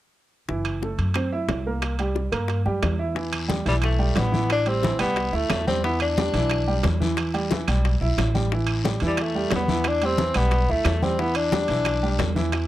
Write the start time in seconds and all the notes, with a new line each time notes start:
0.48 F#1 E3 E4, high bongo
0.65 high timbale, claves
0.82 A3 A4, high bongo, low timbale
0.98 F#2, high timbale
1.14 C4 C5, high bongo, high timbale, claves
1.32 E4 E5
1.48 C2, high bongo, low bongo, high timbale, low timbale
1.67 A#3 A#4
1.82 high bongo, high timbale, claves
1.99 G3 G4, high bongo, high timbale
2.15 high bongo, low timbale
2.32 G2 A#3 A#4, high bongo, high timbale, claves
2.48 high bongo, high timbale
2.65 F#2 G3 G4, high bongo
2.83 E2, high bongo, low bongo, high timbale, low timbale, claves
2.99 E4 E5
3.15 E3 E4, high bongo, high conga, long guiro
3.33 high conga, high timbale, claves
3.48 G3 G4, high bongo, high conga, low timbale, short guiro
3.66 B1 E3 G3 E4, high conga, high timbale, short guiro
3.82 A3, high bongo, high conga, high timbale, long guiro, claves
3.99 G3 G4, high conga
4.16 A1 B3, high bongo, low bongo, high conga, high timbale, low timbale, short guiro
4.32 E3 E4, high conga, short guiro
4.50 D4, high bongo, high conga, high timbale, long guiro, claves
4.66 G3 C4 G4, high bongo, high conga, high timbale
4.82 E3 E4, high bongo, high conga, low timbale, short guiro
4.99 C2 G3 B3 G4, high bongo, high conga, high timbale, short guiro, claves
5.16 high bongo, high conga, high timbale, long guiro
5.32 D2 A3 E4 E5, high bongo, high conga
5.50 E2, high bongo, low bongo, high conga, high timbale, low timbale, short guiro, claves
5.67 G3 C4 G4, high conga, short guiro
5.83 E3 B3 E4, high bongo, high conga, long guiro
6.00 D4, high conga, high timbale, claves
6.17 G3 G4, high bongo, high conga, low timbale, short guiro
6.33 B1 E3 E4, high conga, high timbale, short guiro
6.50 high bongo, high conga, high timbale, long guiro, claves
6.68 G3 G4, high conga
6.83 E2, high bongo, low bongo, high conga, high timbale, low timbale, short guiro
7.00 E3 E4, high conga, short guiro
7.17 high bongo, high conga, high timbale, long guiro, claves
7.34 G3 G4, high bongo, high conga, high timbale
7.51 E3 E4, high bongo, high conga, low timbale, short guiro
7.68 B1 G3 G4, high bongo, high conga, high timbale, short guiro, claves
7.85 high bongo, high conga, high timbale, long guiro
8.01 B1 E4 E5, high bongo, high conga
8.17 A1, high bongo, low bongo, high conga, high timbale, low timbale, short guiro, claves
8.34 G3 G4, high conga, short guiro
8.52 E3 E4, high bongo, high conga, long guiro
8.67 high conga, high timbale, claves
8.84 G3 G4, high bongo, high conga, low timbale, short guiro
9.00 E2 E3 E4, high conga, high timbale, short guiro
9.07 G3
9.17 high bongo, high conga, high timbale, long guiro, claves
9.22 A3
9.35 G3 G4, high conga
9.51 E2, high bongo, low bongo, high conga, high timbale, low timbale, short guiro
9.55 B3
9.68 E3 E4, high conga, short guiro
9.84 D4, high bongo, high conga, high timbale, long guiro, claves
10.02 G3 C4 G4, high bongo, high conga, high timbale
10.18 E3 E4, high bongo, high conga, low timbale, short guiro
10.34 B1 G3 B3 G4, high bongo, high conga, high timbale, short guiro, claves
10.51 high bongo, high conga, high timbale, long guiro
10.68 D2 A3 E4 E5, high bongo, high conga
10.84 E2, high bongo, low bongo, high conga, high timbale, low timbale, short guiro, claves
11.02 G3 C4 G4, high conga, short guiro
11.19 E3 B3 E4, high bongo, high conga, long guiro
11.35 D4, high conga, high timbale, claves
11.52 G3 G4, high bongo, high conga, low timbale, short guiro
11.68 B1 E3 E4, high conga, high timbale, short guiro
11.85 high bongo, high conga, high timbale, long guiro, claves
12.03 G3 G4, high conga
12.19 E2, high bongo, low bongo, high conga, high timbale, low timbale, short guiro
12.36 E3 E4, high conga, short guiro
12.52 high bongo, high conga, high timbale, long guiro, claves